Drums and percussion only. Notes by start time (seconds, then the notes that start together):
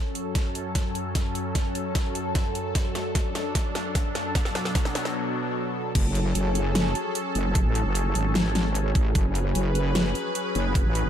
0.15 closed hi-hat
0.35 kick, snare, closed hi-hat
0.55 closed hi-hat
0.75 kick, snare, closed hi-hat
0.95 closed hi-hat
1.15 kick, snare, closed hi-hat
1.35 closed hi-hat
1.55 kick, snare, closed hi-hat
1.75 closed hi-hat
1.95 kick, snare, closed hi-hat
2.15 closed hi-hat
2.35 kick, snare, closed hi-hat
2.55 closed hi-hat
2.75 kick, snare, closed hi-hat
2.95 snare, closed hi-hat
3.15 kick, snare, closed hi-hat
3.35 snare, closed hi-hat
3.55 kick, snare, closed hi-hat
3.75 snare, closed hi-hat
3.95 kick, snare, closed hi-hat
4.15 snare, closed hi-hat
4.35 kick, snare, closed hi-hat
4.45 snare
4.55 snare, closed hi-hat
4.65 snare
4.75 kick, snare, closed hi-hat
4.85 snare
4.95 snare, closed hi-hat
5.05 snare
5.95 kick, closed hi-hat, crash
6.15 closed hi-hat
6.35 closed hi-hat
6.55 closed hi-hat
6.75 snare, closed hi-hat
6.95 closed hi-hat
7.15 closed hi-hat
7.35 closed hi-hat
7.55 kick, closed hi-hat
7.75 closed hi-hat
7.95 closed hi-hat
8.15 closed hi-hat
8.35 snare, closed hi-hat
8.55 snare, closed hi-hat
8.75 closed hi-hat
8.95 kick, closed hi-hat
9.15 kick, closed hi-hat
9.35 closed hi-hat
9.55 closed hi-hat
9.75 closed hi-hat
9.95 snare, closed hi-hat
10.15 closed hi-hat
10.35 closed hi-hat
10.55 closed hi-hat
10.75 kick, closed hi-hat
10.95 closed hi-hat